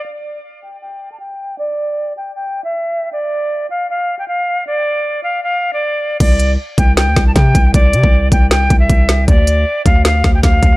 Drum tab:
CC |----------------|----------------|----------------|----------------|
HH |----------------|----------------|----------------|----------------|
SD |----------------|----------------|----------------|----------------|
BD |----------------|----------------|----------------|----------------|

CC |x---------------|----------------|----------------|
HH |x-x---x-x-x-x-x-|x-x---x-x-x-x-x-|x-x---x-x-x-x-x-|
SD |--------o-o-o---|--------o-----o-|--------o-o-o---|
BD |o-----o---o-o-o-|o--o--o---o-o---|o-----o---o-o-o-|